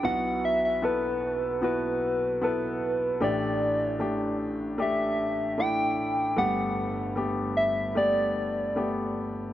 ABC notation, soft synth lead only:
X:1
M:4/4
L:1/16
Q:1/4=76
K:Bphr
V:1 name="Soft synth lead"
f2 e e B4 B4 B4 | d6 z2 e4 g4 | f4 z2 e2 d6 z2 |]